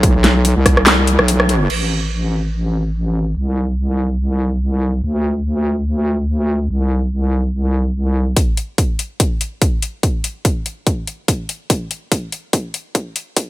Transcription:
Already playing: B1
0.03 kick, closed hi-hat
0.15 B1
0.24 snare, closed hi-hat
0.45 closed hi-hat
0.56 C2
0.66 kick, cross-stick, closed hi-hat
0.77 cross-stick
0.87 snare, clap, closed hi-hat
1.07 closed hi-hat
1.19 B1, cross-stick
1.28 closed hi-hat
1.40 cross-stick
1.49 closed hi-hat
1.70 A1, crash
3.37 C2
5.03 D2
6.70 C2
8.37 kick, closed hi-hat
8.57 closed hi-hat
8.78 kick, closed hi-hat
8.99 closed hi-hat
9.20 kick, closed hi-hat
9.41 closed hi-hat
9.62 kick, closed hi-hat
9.82 closed hi-hat
10.03 kick, closed hi-hat
10.24 closed hi-hat
10.45 kick, closed hi-hat
10.66 closed hi-hat
10.87 kick, closed hi-hat
11.07 closed hi-hat
11.28 kick, closed hi-hat
11.49 closed hi-hat
11.70 kick, closed hi-hat
11.91 closed hi-hat
12.12 kick, closed hi-hat
12.32 closed hi-hat
12.53 kick, closed hi-hat
12.74 closed hi-hat
12.95 kick, closed hi-hat
13.16 closed hi-hat
13.37 kick, closed hi-hat

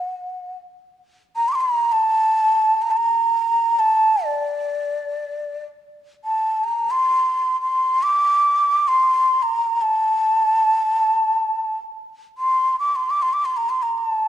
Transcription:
Already playing: F#5
1.36 A#5
1.48 C6 D6
1.55 C6
1.61 A#5
1.92 A5
2.82 A#5
2.91 A5
2.97 A#5
3.79 A5
4.25 D5
6.25 A5
6.64 A#5
6.91 C6
7.61 C6
8.03 D6
8.88 C6
9.42 A#5
9.81 A5
12.38 C6
12.79 D6
12.95 C6
13.10 D6
13.22 C6
13.33 D6
13.45 C6
13.57 A#5
13.69 C6
13.82 A#5
13.98 A5

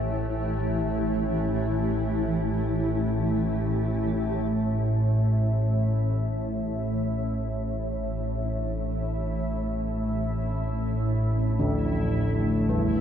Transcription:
Already playing: A1 A2 E3 A3 E4 G4
4.50 A2 E4 E5
4.54 A1
6.34 D4
11.59 D3
12.69 E3

